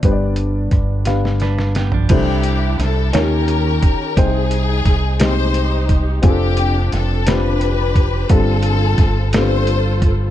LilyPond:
<<
  \new Staff \with { instrumentName = "String section" } { \time 6/8 \key g \mixolydian \tempo 4. = 58 << { r2. | g'4 a'8 bes'4. | aes'4. c''4 r8 | g'4 a'8 b'4. |
a'4. c''4 r8 | } \\ { r2. | <d' e'>4. <des' g'>4. | ees'4. <ees' g'>4. | <c' d'>4. <d' g'>4. |
<c' f'>4. <f' a'>4. | } >> }
  \new Staff \with { instrumentName = "Grand piano" } { \time 6/8 \key g \mixolydian <b d' g' b' c'' d''>4 r8 <b d' g' b' f''>4 r8 | <d' e' g' a' c''>4 r8 <des' ees' f' g' bes' des''>4 r8 | <c' ees' aes' c'' g''>4 r8 <aes c' ees' g' ees''>4 r8 | <c' d' f' g' aes' a'>4 r8 <c' d' f' g' b'>4 r8 |
<c' d' f' g' a'>4 r8 <b c' d' f' g' a'>4 r8 | }
  \new Staff \with { instrumentName = "Grand piano" } { \clef bass \time 6/8 \key g \mixolydian g,4. r4. | c4. ees4. | c4. r4. | r2. |
g,4. r4. | }
  \new Staff \with { instrumentName = "Clean electric guitar" } { \time 6/8 \key g \mixolydian r2 <d' b'>8 <b g'>16 <f d'>16~ | <f d'>16 r2 r8. | r2. | r2. |
r2. | }
  \new Staff \with { instrumentName = "French horn section" } { \time 6/8 \key g \mixolydian <d g b d'>2. | r2. | r2. | r2. |
r2. | }
  \new Staff \with { instrumentName = "Fingered electric bass" } { \clef bass \time 6/8 \key g \mixolydian g,,4 g,,2 | c,4 c,8 ees,4 r8 | c,4 c,2 | f,,4 f,,2 |
g,,4 g,,2 | }
  \new DrumStaff \with { instrumentName = "Drums" } \drummode { \time 6/8 <hh bd>8 hh8 <hh bd ss>8 <hh sn>16 sn16 <hh sn>16 sn16 <hh sn>16 tomfh16 | <cymc hh bd>8 hh8 <hh sn>8 <hh sn>8 hh8 <hh bd>8 | <hh bd>8 hh8 <hh bd sn>8 <hh sn>8 hh8 <hh bd>8 | <hh bd>8 hh8 <hh sn>8 <hh sn>8 hh8 <hh bd>8 |
<hh bd>8 hh8 <hh bd sn>8 <hh sn>8 hh8 <hh bd>8 | }
>>